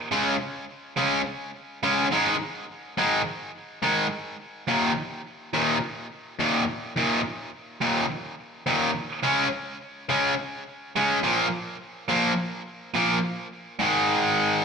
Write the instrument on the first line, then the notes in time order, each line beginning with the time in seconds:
distorted electric guitar
0.12 C#3 G#3 C#4
0.97 C#3 G#3 C#4
1.83 C#3 G#3 C#4
2.11 G#2 D#3 G#3
2.97 G#2 D#3 G#3
3.82 G#2 D#3 G#3
4.68 D#2 A#2 D#3
5.54 D#2 A#2 D#3
6.39 D#2 A#2 D#3
6.96 D#2 A#2 D#3
7.81 D#2 A#2 D#3
8.66 D#2 A#2 D#3
9.23 C#3 G#3 C#4
10.09 C#3 G#3 C#4
10.96 C#3 G#3 C#4
11.23 A#2 F3 A#3
12.09 A#2 F3 A#3
12.95 A#2 F3 A#3
13.79 G#2 D#3 G#3